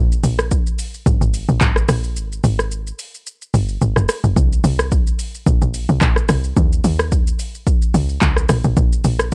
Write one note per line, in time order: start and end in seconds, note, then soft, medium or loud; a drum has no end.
0.00 0.20 A#1 loud
0.12 shaker medium
0.23 0.72 A#1 loud
0.23 open hi-hat medium
0.23 shaker loud
0.39 cross-stick loud
0.39 shaker medium
0.51 kick loud
0.51 shaker medium
0.67 shaker medium
0.79 open hi-hat medium
0.79 shaker medium
0.94 shaker soft
1.06 1.19 G#1 loud
1.06 kick loud
1.06 shaker medium
1.21 1.45 G#1 medium
1.21 shaker medium
1.34 open hi-hat soft
1.34 shaker medium
1.48 1.60 A#1 loud
1.48 shaker soft
1.61 1.85 G#1 loud
1.61 kick loud
1.61 clap loud
1.61 shaker medium
1.76 cross-stick medium
1.76 shaker medium
1.88 2.18 A#1 loud
1.88 cross-stick loud
1.88 open hi-hat medium
1.88 shaker loud
2.04 shaker medium
2.16 2.40 G#1 loud
2.16 shaker medium
2.32 shaker medium
2.44 2.92 G#1 loud
2.44 open hi-hat medium
2.44 shaker loud
2.59 cross-stick medium
2.59 shaker medium
2.71 shaker medium
2.87 shaker medium
2.99 open hi-hat medium
2.99 shaker medium
3.14 shaker soft
3.27 shaker medium
3.42 shaker medium
3.54 3.78 G1 loud
3.54 open hi-hat soft
3.54 shaker medium
3.69 shaker soft
3.81 3.95 G#1 medium
3.81 shaker medium
3.96 4.07 F#1 medium
3.96 cross-stick medium
3.96 shaker medium
4.09 cross-stick loud
4.09 open hi-hat medium
4.09 shaker loud
4.24 4.35 F#1 loud
4.24 shaker medium
4.36 4.61 C2 loud
4.36 kick loud
4.36 shaker medium
4.52 shaker medium
4.64 5.12 C2 loud
4.64 open hi-hat medium
4.64 shaker loud
4.79 cross-stick loud
4.79 shaker medium
4.91 kick loud
4.91 shaker medium
5.07 shaker medium
5.19 open hi-hat medium
5.19 shaker medium
5.35 shaker medium
5.46 5.60 A#1 loud
5.46 kick loud
5.46 shaker medium
5.62 5.86 A#1 medium
5.62 shaker medium
5.74 open hi-hat soft
5.74 shaker medium
5.89 6.00 C2 loud
5.89 shaker soft
6.01 6.26 A#1 loud
6.01 kick loud
6.01 clap loud
6.01 shaker medium
6.16 cross-stick medium
6.16 shaker medium
6.29 6.53 C2 loud
6.29 cross-stick loud
6.29 open hi-hat medium
6.29 shaker loud
6.44 shaker medium
6.57 6.81 D#2 loud
6.57 kick loud
6.57 shaker medium
6.73 shaker medium
6.84 7.32 D#2 loud
6.84 open hi-hat medium
6.84 shaker loud
6.99 cross-stick loud
6.99 shaker medium
7.12 kick loud
7.12 shaker medium
7.27 shaker medium
7.39 open hi-hat medium
7.39 shaker medium
7.55 shaker medium
7.67 kick loud
7.67 shaker medium
7.82 shaker medium
7.94 8.18 C#2 loud
7.94 open hi-hat soft
7.94 shaker medium
8.09 shaker soft
8.22 8.46 C#2 loud
8.22 kick loud
8.22 clap loud
8.22 shaker medium
8.36 cross-stick medium
8.36 shaker medium
8.49 8.63 A#1 loud
8.49 cross-stick loud
8.49 open hi-hat medium
8.49 shaker loud
8.64 8.75 A#1 loud
8.64 shaker medium
8.77 9.01 A#1 loud
8.77 kick loud
8.77 shaker medium
8.93 shaker medium
9.04 9.34 A#1 loud
9.04 open hi-hat medium
9.04 shaker loud
9.19 cross-stick loud
9.19 shaker medium